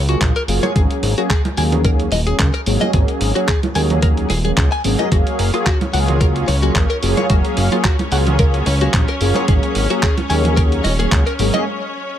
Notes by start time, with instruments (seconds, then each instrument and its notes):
Already playing: analog synth bass C#2
0.08 analog polysynth F#3 A#3 F4 G#4, clean electric guitar F#4, closed hi-hat
0.21 analog synth bass A#1, kick, clap, closed hi-hat
0.36 clean electric guitar A#4, closed hi-hat
0.48 analog synth bass F#1, analog polysynth F#3 A#3 F4 G#4, open hi-hat
0.63 clean electric guitar C#5, closed hi-hat, high conga
0.75 analog synth bass G#1, analog polysynth F#3 A#3 C#4 G#4, clean electric guitar G#4, kick, closed hi-hat
0.91 closed hi-hat
1.03 analog synth bass G#1, open hi-hat
1.17 analog polysynth F#3 A#3 C#4 G#4, clean electric guitar F#4, closed hi-hat
1.30 clean electric guitar G#4, kick, clap, closed hi-hat
1.45 closed hi-hat, high conga
1.57 analog synth bass D#2, analog polysynth F#3 A#3 C#4 G#4, clean electric guitar G#5, open hi-hat
1.72 closed hi-hat, low conga
1.83 analog polysynth F#3 A#3 C#4 G#4, clean electric guitar A#4, kick, closed hi-hat
2.00 closed hi-hat
2.12 analog synth bass D#1, clean electric guitar D#5, open hi-hat, high conga
2.26 analog polysynth F#3 A#3 C#4 G#4, clean electric guitar G#4, closed hi-hat
2.39 analog synth bass C#2, kick, clap, closed hi-hat
2.54 clean electric guitar A#4, closed hi-hat
2.66 analog synth bass G#1, analog polysynth F#3 A#3 C#4 G#4, open hi-hat
2.81 clean electric guitar D#5, closed hi-hat, high conga
2.93 analog synth bass G#1, analog polysynth F#3 A#3 C#4 G#4, clean electric guitar G#4, kick, closed hi-hat
3.08 closed hi-hat
3.21 analog synth bass G#1, open hi-hat
3.35 analog polysynth F#3 A#3 C#4 G#4, clean electric guitar F#4, closed hi-hat
3.48 clean electric guitar G#4, kick, clap, closed hi-hat
3.63 closed hi-hat, high conga
3.75 analog synth bass D#2, analog polysynth F#3 A#3 C#4 G#4, clean electric guitar G#5, open hi-hat
3.90 closed hi-hat, low conga
4.02 analog polysynth F#3 A#3 C#4 G#4, clean electric guitar A#4, kick, closed hi-hat
4.17 closed hi-hat
4.30 analog synth bass D#1, clean electric guitar G#4, open hi-hat, high conga
4.44 analog polysynth F#3 A#3 C#4 G#4, clean electric guitar G#4, closed hi-hat
4.57 analog synth bass C#2, kick, clap, closed hi-hat
4.72 clean electric guitar G#5, closed hi-hat
4.84 analog synth bass G#1, analog polysynth F#3 A#3 C#4 G#4, open hi-hat
4.99 clean electric guitar D#5, closed hi-hat, high conga
5.11 analog synth bass F#1, analog polysynth F#3 A#3 G#4 F5, string section C#4 C#5, clean electric guitar F#4, kick, closed hi-hat
5.27 closed hi-hat
5.39 analog synth bass F#1, open hi-hat
5.53 analog polysynth F#3 A#3 F4 G#4, clean electric guitar F4, closed hi-hat
5.66 clean electric guitar F#4, kick, clap, closed hi-hat
5.81 closed hi-hat, high conga
5.93 analog synth bass C#2, analog polysynth F#3 A#3 F4 G#4, clean electric guitar F#5, open hi-hat
6.08 closed hi-hat, low conga
6.20 analog polysynth F#3 A#3 F4 G#4, clean electric guitar A#4, kick, closed hi-hat
6.36 closed hi-hat
6.48 analog synth bass C#2, clean electric guitar C#5, open hi-hat, high conga
6.62 analog polysynth F#3 A#3 F4 G#4, clean electric guitar F#4, closed hi-hat
6.75 analog synth bass A#1, kick, clap, closed hi-hat
6.90 clean electric guitar A#4, closed hi-hat
7.02 analog synth bass F#1, analog polysynth F#3 A#3 F4 G#4, open hi-hat
7.17 clean electric guitar C#5, closed hi-hat, high conga
7.29 analog synth bass F#1, analog polysynth F#3 A#3 G#4 F5, clean electric guitar F#4, kick, closed hi-hat
7.45 closed hi-hat
7.57 analog synth bass F#1, open hi-hat
7.71 analog polysynth F#3 A#3 F4 G#4, clean electric guitar F4, closed hi-hat
7.84 clean electric guitar F#4, kick, clap, closed hi-hat
7.99 closed hi-hat, high conga
8.11 analog synth bass C#2, analog polysynth F#3 A#3 F4 G#4, clean electric guitar F#5, open hi-hat
8.27 closed hi-hat, low conga
8.39 analog polysynth F#3 A#3 F4 G#4, clean electric guitar A#4, kick, closed hi-hat
8.54 closed hi-hat
8.66 analog synth bass C#2, clean electric guitar C#5, open hi-hat, high conga
8.81 analog polysynth F#3 A#3 F4 G#4, clean electric guitar F#4, closed hi-hat
8.93 analog synth bass A#1, kick, clap, closed hi-hat
9.08 clean electric guitar A#4, closed hi-hat
9.20 analog synth bass F#1, analog polysynth F#3 A#3 F4 G#4, open hi-hat
9.34 clean electric guitar C#5, closed hi-hat, high conga
9.48 analog synth bass G#1, analog polysynth F#3 A#3 C#4 G#4, clean electric guitar G#4, kick, closed hi-hat
9.63 closed hi-hat
9.75 analog synth bass G#1, open hi-hat
9.90 analog polysynth F#3 A#3 C#4 G#4, clean electric guitar F#4, closed hi-hat
10.03 clean electric guitar G#4, kick, clap, closed hi-hat
10.17 closed hi-hat, high conga
10.30 analog synth bass D#2, analog polysynth F#3 A#3 C#4 G#4, clean electric guitar G#5, open hi-hat
10.44 closed hi-hat, low conga
10.56 analog polysynth F#3 A#3 C#4 G#4, clean electric guitar A#4, kick, closed hi-hat
10.72 closed hi-hat
10.84 analog synth bass D#1, clean electric guitar D#5, open hi-hat, high conga
10.99 analog polysynth F#3 A#3 C#4 G#4, clean electric guitar G#4, closed hi-hat
11.12 analog synth bass C#2, kick, clap, closed hi-hat
11.26 clean electric guitar A#4, closed hi-hat
11.39 analog synth bass G#1, analog polysynth F#3 A#3 C#4 G#4, open hi-hat
11.54 clean electric guitar D#5, closed hi-hat, high conga